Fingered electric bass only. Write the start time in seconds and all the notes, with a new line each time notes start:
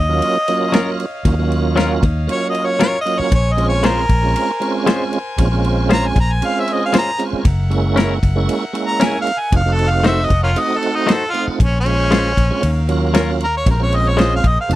Already playing: D#2
1.25 D#2
2.03 D#2
3.20 muted fingered electric bass stroke
3.32 A#1
4.09 A#1
5.38 A#1
6.16 A#1
7.33 muted fingered electric bass stroke
7.45 F#1
8.23 F#1
9.52 F1
10.30 F1
11.48 muted fingered electric bass stroke
11.60 A#1
12.37 A#1
12.63 D#2
13.66 A#1
14.44 A#1
14.69 F1